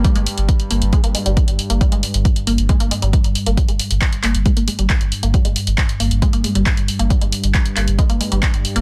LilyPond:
<<
  \new Staff \with { instrumentName = "Synth arpeggio sound" } { \clef bass \time 4/4 \key g \phrygian \tempo 4 = 136 g16 aes16 r4 bes16 r16 aes16 bes16 aes16 g16 r8. bes16 | g16 aes16 r4 bes16 r16 aes16 bes16 aes16 g16 r8. bes16 | g16 aes16 r4 bes16 r16 aes16 bes16 aes16 g16 r8. bes16 | g16 aes16 r4 bes16 r16 aes16 bes16 aes16 g16 r8. bes16 |
g16 aes16 r4 bes16 r16 aes16 bes16 aes16 g16 r8. bes16 | }
  \new Staff \with { instrumentName = "Synth drone" } { \clef bass \time 4/4 \key g \phrygian g,1~ | g,1 | g,1~ | g,1~ |
g,1 | }
  \new Staff \with { instrumentName = "Sub bass" } { \clef bass \time 4/4 \key g \phrygian r16 g,,16 r16 g,,16 r8 g,,16 g,,16 r16 g,,16 r16 g,,16 r16 g,,16 r16 g,,16 | r16 g,,16 r16 g,,16 r8 g,,16 g,,16 r16 g,,16 r16 g,,16 r16 g,,16 r16 g,,16 | r16 g,,16 r16 g,,16 r8 g,,16 g,,16 r16 g,,16 r16 g,,16 r16 g,,16 r16 g,,16 | r16 g,,16 r16 g,,16 r8 g,,16 g,,16 r16 g,,16 r16 g,,16 r16 g,,16 r16 g,,16 |
r16 g,,16 r16 g,,16 r8 g,,16 g,,16 r16 g,,16 r16 g,,16 r16 g,,16 r16 g,,16 | }
  \new DrumStaff \with { instrumentName = "Drums" } \drummode { \time 4/4 <hh bd>16 hh16 hho16 hh16 <hh bd>16 hh16 hho16 hh16 <hh bd>16 hh16 hho16 hh16 <hh bd>16 hh16 hho16 hh16 | <hh bd>16 hh16 hho16 hh16 <hh bd>16 hh16 hho16 hh16 <hh bd>16 hh16 hho16 hh16 <hh bd>16 hh16 hho16 hh16 | <hh bd>16 hh16 hho16 hh16 <hc hh bd>16 hh16 <hc hho>16 hh16 <hh bd>16 hh16 hho16 hh16 <hc hh bd>16 hh16 hho16 hh16 | <hh bd>16 hh16 hho16 hh16 <hc hh bd>16 hh16 hho16 hh16 <hh bd>16 hh16 hho16 hh16 <hc hh bd>16 hh16 hho16 hh16 |
<hh bd>16 hh16 hho16 hh16 <hc hh bd>16 hh16 <hc hho>16 hh16 <hh bd>16 hh16 hho16 hh16 <hc hh bd>16 hh16 hho16 hh16 | }
>>